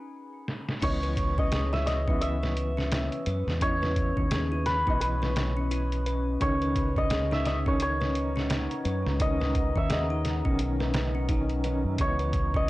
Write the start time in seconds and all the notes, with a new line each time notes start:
Already playing: B4 A#5 D#6
0.48 snare
0.69 snare
0.82 C#2 E3 B3 C#4 B4 C#5 D#5, kick, closed hi-hat, crash
1.03 B4, closed hi-hat
1.17 kick, closed hi-hat
1.38 C#4 D#5, kick
1.52 G#4, snare, closed hi-hat
1.73 E4 E5, snare
1.86 D#5, snare, closed hi-hat
2.08 E3 B3 C#4 E5, kick
2.21 E5, closed hi-hat
2.43 B4, snare
2.57 closed hi-hat
2.77 C#4, snare
2.92 E4, snare, closed hi-hat
3.12 closed hi-hat
3.26 F#2 B4, closed hi-hat
3.47 E2, snare
3.61 B3 C#4 E4 C#5 D#5, kick, closed hi-hat
3.82 B4, snare
3.96 kick, closed hi-hat
4.17 D#2 C#4, kick
4.31 G#4, snare, closed hi-hat
4.52 E4
4.66 B4, snare, closed hi-hat
4.87 B1 E3 B3 C#4 D#5, kick
5.00 B4, closed hi-hat
5.22 B4, snare
5.36 snare, closed hi-hat
5.57 C#4
5.71 E4, closed hi-hat
5.92 closed hi-hat
6.06 B4, closed hi-hat
6.40 C#2 D#3 C#4 C#5 D#5 F#5 A#5, kick, closed hi-hat
6.62 B4, closed hi-hat
6.76 kick, closed hi-hat
6.96 C#4 D#5, kick
7.10 G#4, snare, closed hi-hat
7.31 D#4 E5, snare
7.45 D#5, snare, closed hi-hat
7.66 D#3 C#4 C#5, kick
7.80 C#5, closed hi-hat
8.01 B4, snare
8.15 closed hi-hat
8.36 C#4, snare
8.50 D#4, snare, closed hi-hat
8.71 closed hi-hat
8.85 F#2 B4, closed hi-hat
9.06 C#2, snare
9.19 D#3 C#4 D#5, kick, closed hi-hat
9.40 B4, snare
9.55 kick, closed hi-hat
9.75 D#2 C#4 E5, kick
9.89 G#4 D#5, snare, closed hi-hat
10.10 D#4
10.25 snare, closed hi-hat
10.45 B1 D#3 C#4, kick
10.59 closed hi-hat
10.80 B4, snare
10.94 snare, closed hi-hat
11.15 C#4
11.29 D#3 C#4 D#4, kick, closed hi-hat
11.50 closed hi-hat
11.64 D#3 C#4 B4, closed hi-hat
11.85 F#2
11.98 C#2 E3 B3 C#4 B4 C#5 D#5, kick, closed hi-hat
12.19 B4, closed hi-hat
12.33 kick, closed hi-hat
12.54 C#4 D#5, kick